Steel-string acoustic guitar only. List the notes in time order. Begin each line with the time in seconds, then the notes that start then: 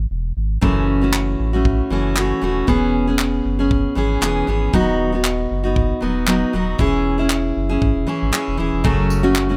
0.61 F#2 C#3 E3 A3 C#4 F#4
1.01 E3 A3 C#4 F#4
1.53 E3 A3 C#4 F#4
1.90 E3 A3 C#4 F#4
2.16 E3 A3 C#4 F#4
2.42 E3 A3 C#4 F#4
2.67 E3 B3 C#4 G#4
3.07 B3 C#4 G#4
3.59 B3 C#4 G#4
3.95 E3 B3 C#4 G#4
4.21 E3 B3 C#4 G#4
4.47 E3 B3 C#4 G#4
4.73 D#3 F#3 B3 D#4 F#4
5.12 B3 D#4 F#4
5.64 B3 D#4 F#4
6.01 F#3 B3 D#4 F#4
6.27 F#3 B3 D#4 F#4
6.53 F#3 B3 D#4 F#4
6.78 E3 C#4 E4 G#4
7.18 C#4 E4 G#4
7.69 C#4 E4 G#4
8.07 E3 C#4 E4 G#4
8.32 E3 C#4 E4 G#4
8.57 E3 C#4 E4 G#4
8.84 F#2 C#3 F#3 A3 C#4 F#4
9.23 F#2 C#3 F#3 A3 C#4 F#4
9.49 F#3 A3 C#4 F#4